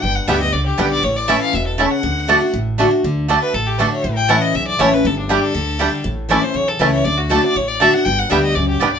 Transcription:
<<
  \new Staff \with { instrumentName = "Fiddle" } { \time 4/4 \key d \major \tempo 4 = 239 g''8 fis''8 e''8 ees''8 d''8 g'8 b'8 d''8 | cis''8 d''8 e''8 f''8 e''8 a'8 cis''8 fis''8~ | fis''2 r2 | r4. b'8 a'8 g'8 b'8 cis''8~ |
cis''8 g''8 fis''8 ees''8 e''8 d''8 cis''8 b'8 | a'8 d'8 g'8 a'2~ a'8 | r4 d''8 c''8 cis''8 a'8 b'8 cis''8 | d''8 fis'8 a'8 d''8 cis''8 d''8 e''8 fis''8 |
g''8 fis''8 e''8 ees''8 d''8 g'8 b'8 d''8 | }
  \new Staff \with { instrumentName = "Mandolin" } { \time 4/4 \key d \major r4 <b g' d'' g''>8 r4. <b g' d'' g''>8 r8 | r4 <a e' cis'' a''>8 r4. <a e' cis'' a''>8 r8 | r4 <a fis' d'' a''>8 r4. <a fis' d'' a''>8 r8 | r4 <a fis' d'' a''>8 r4. <a fis' d'' a''>8 r8 |
r4 <a e' cis'' a''>8 r4. <a e' cis'' a''>8 r8 | r4 <a g' d'' g''>8 r4. <a g' d'' g''>8 r8 | r4 <a e' cis'' a''>8 r4. <a e' cis'' a''>8 r8 | r4 <a fis' d'' a''>8 r4. <a fis' d'' a''>8 r8 |
r4 <b g' d'' g''>8 r4. <b g' d'' g''>8 r8 | }
  \new Staff \with { instrumentName = "Five-string banjo" } { \time 4/4 \key d \major r4 <g b d'>8 r4. <g b d'>8 r8 | r4 <a cis' e'>8 r4. <a cis' e'>8 r8 | r4 <a d'>8 r4. <a d'>8 r8 | r4 <a d'>8 r4. <a d'>8 r8 |
r4 <a cis' e'>8 r4. <a cis' e'>8 r8 | r4 <g d'>8 r4. <g d'>8 r8 | r4 <a cis' e'>8 r4. <a cis' e'>8 r8 | r4 <a d'>8 r4. <a d'>8 r8 |
r4 <g b d'>8 r4. <g b d'>8 r8 | }
  \new Staff \with { instrumentName = "Steel-string acoustic guitar" } { \time 4/4 \key d \major << { r4 <d g b g'>8 <b g'>8 r4 <d g b g'>4 | r4 <e a cis' e'>4 r2 | r4 <d a d' fis'>8 <d' fis'>8 r4 <d a d' fis'>8 <d' fis'>8 | r4 <d a d' fis'>4 r4 <d a d' fis'>4 |
r4 <e a cis' e'>4 r4 <e a cis' e'>8 <cis' e'>8 | r4 <d g d' g'>4 r4 <d g d' g'>4 | r4 <e a cis' e'>8 <cis' e'>8 r4 <e a cis' e'>4 | r4 <d a d' fis'>8 <d' fis'>8 r4 <d a d' fis'>8 <d' fis'>8 |
r4 <d g b g'>4 r2 | } \\ { g,2 d2 | a,2 b,4 cis4 | d2 a,2 | d2 a,2 |
a,2 e,2 | g,2 d2 | a,2 e,2 | d2 a,2 |
g,2 fis,4 g,4 | } >> }
  \new Staff \with { instrumentName = "Upright bass" } { \clef bass \time 4/4 \key d \major g,,4 d,4 cis,4 b,,4 | a,,2 e,,2 | d,2 a,,2 | d,2 a,,2 |
a,,2 b,,4 a,,4 | g,,2 d,2 | a,,2 b,,4 cis,4 | d,2 a,,2 |
g,,4 d,4 cis,4 b,,4 | }
>>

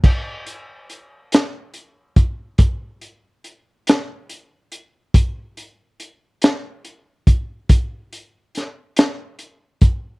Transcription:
\new DrumStaff \with { instrumentName = "Drums" } \drummode { \time 12/8 \tempo 4. = 47 <cymc bd>8 hh8 hh8 <hh sn>8 hh8 <hh bd>8 <hh bd>8 hh8 hh8 <hh sn>8 hh8 hh8 | <hh bd>8 hh8 hh8 <hh sn>8 hh8 <hh bd>8 <hh bd>8 hh8 <hh sn>8 <hh sn>8 hh8 <hh bd>8 | }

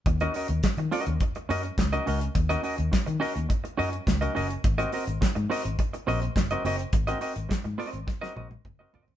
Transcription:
<<
  \new Staff \with { instrumentName = "Clean electric guitar" } { \time 4/4 \key ees \dorian \tempo 4 = 105 r16 <des' ges' bes' ees''>16 <des' ges' bes' ees''>16 r8. <des' ges' bes' ees''>16 r8. <des' ges' bes' ees''>16 r8 <des' ges' bes' ees''>16 <des' ges' bes' ees''>16 r16 | r16 <des' ges' bes' ees''>16 <des' ges' bes' ees''>16 r8. <des' ges' bes' ees''>16 r8. <des' ges' bes' ees''>16 r8 <des' ges' bes' ees''>16 <des' ges' bes' ees''>16 r16 | r16 <c' ges' bes' ees''>16 <c' ges' bes' ees''>16 r8. <c' ges' bes' ees''>16 r8. <c' ges' bes' ees''>16 r8 <c' ges' bes' ees''>16 <c' ges' bes' ees''>16 r16 | r16 <c' ges' bes' ees''>16 <c' ges' bes' ees''>16 r8. <c' ges' bes' ees''>16 r8 <c' ges' bes' ees''>16 <c' ges' bes' ees''>16 r8 <c' ges' bes' ees''>16 <c' ges' bes' ees''>16 r16 | }
  \new Staff \with { instrumentName = "Fingered electric bass" } { \clef bass \time 4/4 \key ees \dorian ees,8 r16 ees,16 r16 ees16 r16 ees,16 r8 ges,8 des,8 des,8 | ees,8 r16 ees,16 r16 ees16 r16 ees,16 r8 ges,8 des,8 ges,,8 | aes,,8 r16 aes,,16 r16 aes,16 r16 aes,,16 r8 bes,,8 ges,,8 ges,,8 | aes,,8 r16 aes,,16 r16 aes,16 r16 aes,,16 r8 bes,,8 ges,,8 ges,,8 | }
  \new DrumStaff \with { instrumentName = "Drums" } \drummode { \time 4/4 <hh bd>16 hh16 hho16 hh16 <hc hh bd sn>16 hh16 hho16 hh16 <hh bd>16 hh16 hho16 hh16 <hc hh bd sn>16 hh16 hho16 hh16 | <hh bd>16 hh16 hho16 hh16 <hc hh bd sn>16 hh16 hho16 hh16 <hh bd>16 hh16 hho16 hh16 <hc hh bd sn>16 hh16 hho16 hh16 | <hh bd>16 hh16 hho16 hh16 <hc hh bd sn>16 hh16 hho16 hh16 <hh bd>16 hh16 hho16 hh16 <hc hh bd sn>16 hh16 hho16 hh16 | <hh bd>16 hh16 hho16 hh16 <hc hh bd sn>16 hh16 hho16 hh16 <bd sn>16 sn16 tommh16 tommh16 <bd toml>8 tomfh16 tomfh16 | }
>>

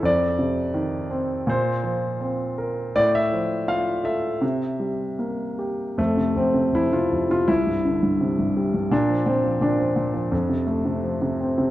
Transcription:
<<
  \new Staff \with { instrumentName = "Grand piano" } { \time 4/4 \key c \mixolydian \tempo 4 = 83 d''2 c''2 | d''16 e''8. f''8 e''4. r4 | \key f \major a8 c'8 e'16 f'8 f'16 e'2 | d'8 c'8 d'4. r4. | }
  \new Staff \with { instrumentName = "Grand piano" } { \clef bass \time 4/4 \key c \mixolydian f,8 c8 ees8 c'8 bes,8 f8 c'8 bes'8 | a,8 f8 f'8 a'8 c8 g8 bes8 g'8 | \key f \major f,16 c16 f,16 c16 f,16 c16 f,16 c16 c,16 g,16 d16 g,16 c16 g,16 g16 g,16 | bes,16 f16 bes,16 f16 bes,16 f16 bes,16 f16 f,16 c16 a16 c16 f16 c16 c'16 c16 | }
>>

